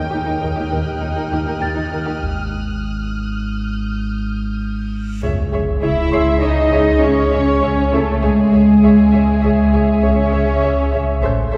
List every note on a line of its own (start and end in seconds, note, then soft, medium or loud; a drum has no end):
0.00 2.25 D#2 medium
0.00 2.23 G4 medium
0.00 2.20 A#4 medium
0.00 2.23 D#5 medium
0.00 2.18 G5 medium
0.00 4.89 D#6 soft
0.00 4.89 F6 soft
0.00 0.98 F#6 medium
0.11 0.19 D#2 soft
0.11 0.20 D#2 soft
0.11 0.18 D#4 soft
0.11 0.17 G4 soft
0.25 0.34 D#2 soft
0.25 0.32 D#4 soft
0.25 0.34 D#4 soft
0.40 0.49 D#2 medium
0.40 0.50 D#2 medium
0.40 0.47 D#4 medium
0.40 0.47 A#4 medium
0.40 3.78 F#6 soft
0.56 0.65 D#2 soft
0.56 0.63 D#4 soft
0.56 0.62 G4 soft
0.71 0.79 D#2 medium
0.71 0.77 D#4 medium
0.71 0.78 A#4 soft
1.01 1.09 D#2 soft
1.01 1.10 D#2 soft
1.01 1.07 D#4 soft
1.01 1.09 D#4 soft
1.16 1.24 D#2 medium
1.16 1.23 D#4 medium
1.16 1.22 A#4 medium
1.32 1.39 D#2 soft
1.32 1.38 D#4 soft
1.32 1.38 G4 soft
1.46 1.54 D#2 medium
1.46 1.52 D#4 medium
1.46 1.53 A#4 medium
1.61 1.68 D#2 soft
1.61 1.69 D#2 soft
1.61 1.68 D#4 soft
1.61 1.67 G4 soft
1.61 2.18 A6 soft
1.75 1.85 D#2 soft
1.75 1.82 D#4 soft
1.91 1.98 D#2 medium
1.91 1.99 D#2 medium
1.91 1.98 D#4 medium
1.91 1.98 A#4 soft
2.06 2.14 D#2 soft
2.06 2.13 D#4 soft
2.06 2.13 G4 soft
2.23 5.22 G#1 medium
2.23 reverse cymbal soft
3.78 4.89 G6 soft
5.22 5.30 C#2 medium
5.22 8.19 C#2 medium
5.22 5.30 G#4 medium
5.22 8.19 G#4 medium
5.22 5.30 C#5 medium
5.22 8.19 C#5 medium
5.22 5.32 E5 medium
5.22 8.19 G#5 medium
5.22 sub drop medium
5.52 5.61 C#2 medium
5.52 5.60 G#4 medium
5.52 5.60 C#5 medium
5.52 5.61 E5 medium
5.82 5.91 C#2 medium
5.82 6.39 E4 medium
5.82 5.90 G#4 medium
5.82 5.90 C#5 medium
5.82 5.91 E5 medium
5.82 6.39 E5 medium
6.12 6.21 C#2 medium
6.12 6.20 G#4 medium
6.12 6.20 C#5 medium
6.12 6.22 E5 soft
6.12 7.89 C6 soft
6.12 7.89 C7 medium
6.42 6.51 C#2 medium
6.42 7.03 D#4 medium
6.42 6.50 G#4 medium
6.42 6.50 C#5 medium
6.42 7.02 D#5 medium
6.42 6.51 E5 medium
6.72 6.80 C#2 medium
6.72 6.80 G#4 medium
6.72 6.80 C#5 medium
6.72 6.80 E5 medium
7.02 7.10 C#2 medium
7.02 7.93 C#4 medium
7.02 7.10 G#4 medium
7.02 7.10 C#5 medium
7.02 7.93 C#5 medium
7.02 7.10 E5 medium
7.32 7.40 C#2 medium
7.32 7.41 G#4 medium
7.32 7.41 C#5 medium
7.32 7.40 E5 medium
7.62 7.71 C#2 medium
7.62 7.70 G#4 medium
7.62 7.70 C#5 medium
7.62 7.70 E5 soft
7.92 8.01 C#2 medium
7.92 8.23 A3 medium
7.92 8.01 E4 medium
7.92 8.23 A4 medium
7.92 8.01 C#5 medium
7.92 8.01 E5 medium
8.22 8.31 C#2 medium
8.22 11.22 C#2 medium
8.22 10.03 G#3 medium
8.22 11.18 G#4 medium
8.22 8.31 G#4 medium
8.22 9.99 G#4 medium
8.22 11.19 G#4 medium
8.22 11.18 C#5 medium
8.22 8.30 C#5 medium
8.22 8.30 E5 medium
8.22 11.19 E5 medium
8.52 8.61 C#2 medium
8.52 8.60 G#4 medium
8.52 8.61 C#5 medium
8.52 8.61 E5 soft
8.83 8.91 C#2 medium
8.83 8.91 G#4 medium
8.83 8.91 C#5 medium
8.83 8.91 E5 medium
9.12 9.21 C#2 medium
9.12 9.21 G#4 soft
9.12 9.21 C#5 soft
9.12 9.20 E5 soft
9.42 9.51 C#2 medium
9.42 9.52 G#4 soft
9.42 9.51 C#5 medium
9.42 9.50 E5 medium
9.73 9.81 C#2 medium
9.73 9.81 G#4 medium
9.73 9.82 C#5 soft
9.73 9.81 E5 soft
10.01 10.12 C#2 medium
10.01 11.23 C#4 medium
10.01 10.11 G#4 medium
10.01 11.22 C#5 medium
10.01 10.11 C#5 medium
10.01 10.09 E5 medium
10.32 10.42 C#2 medium
10.32 10.40 G#4 soft
10.32 10.41 C#5 soft
10.32 10.40 E5 medium
10.63 10.71 C#2 medium
10.63 10.71 G#4 soft
10.63 10.71 C#5 medium
10.63 10.71 E5 medium
10.92 11.01 C#2 medium
10.92 11.00 G#4 soft
10.92 11.00 C#5 soft
10.92 11.01 E5 medium
11.20 11.57 A1 medium
11.20 11.31 A1 medium
11.20 11.57 A4 medium
11.20 11.31 A4 medium
11.20 11.57 C5 medium
11.20 11.31 C5 medium
11.20 11.57 E5 medium
11.20 11.30 E5 medium
11.20 11.57 E5 medium
11.26 11.57 F#6 medium
11.52 11.57 A1 medium
11.52 11.57 C4 medium
11.52 11.57 A4 medium
11.52 11.57 C5 medium
11.52 11.57 C5 soft
11.52 11.57 E5 soft